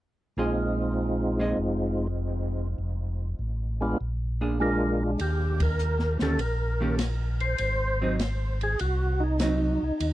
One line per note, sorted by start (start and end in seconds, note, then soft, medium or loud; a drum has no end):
0.37 1.54 A#1 medium
0.37 2.08 G#3 soft
0.37 1.31 A#3 soft
0.37 2.08 C4 soft
0.37 2.08 D#4 soft
0.37 1.31 F4 soft
0.37 2.08 F4 soft
0.37 1.32 G#4 soft
0.37 1.32 D#5 soft
1.39 1.56 A#3 soft
1.39 1.56 F4 soft
1.39 1.57 G#4 medium
1.39 1.57 D#5 medium
1.57 2.74 F1 medium
2.78 3.35 F1 medium
3.39 3.95 A1 medium
3.81 3.97 G#3 medium
3.81 3.98 B3 medium
3.81 3.98 D4 medium
3.81 3.98 F4 medium
4.01 5.16 A#1 medium
4.41 5.16 A#3 soft
4.41 5.16 D4 soft
4.41 5.16 G#4 soft
4.60 5.20 G#3 soft
4.60 5.20 D4 soft
4.60 5.02 F4 soft
4.60 5.03 A#4 loud
5.03 5.11 F4 medium
5.19 6.17 D#2 medium
5.19 5.63 G4 medium
5.19 ride medium
5.60 6.18 A#4 medium
5.60 kick medium
5.60 ride medium
5.79 hi-hat pedal soft
5.99 snare soft
6.19 6.38 D2 medium
6.19 6.38 D#3 medium
6.19 6.38 A#3 medium
6.19 6.38 C#4 medium
6.19 6.39 G4 medium
6.19 6.41 A4 medium
6.19 snare soft
6.19 ride soft
6.39 7.56 A#1 medium
6.39 6.96 A#4 medium
6.39 ride medium
6.80 6.98 D#3 medium
6.80 6.98 A#3 medium
6.80 6.98 C#4 medium
6.80 6.98 G4 medium
6.99 snare medium
6.99 hi-hat pedal medium
6.99 ride medium
7.40 8.16 C5 loud
7.40 ride soft
7.58 8.76 G#1 medium
7.58 ride medium
8.02 8.18 F#3 medium
8.02 8.18 C4 medium
8.02 8.19 D#4 medium
8.19 snare medium
8.19 hi-hat pedal medium
8.19 ride medium
8.61 8.80 G#4 medium
8.61 ride soft
8.79 9.78 C2 medium
8.79 9.23 F#4 medium
8.79 ride medium
9.20 10.13 D#4 medium
9.40 9.78 F#3 medium
9.40 9.78 C4 medium
9.40 9.78 D#4 medium
9.40 snare medium
9.40 hi-hat pedal medium
9.40 ride medium
9.82 9.92 C2 soft
10.00 10.13 D#2 medium
10.00 ride medium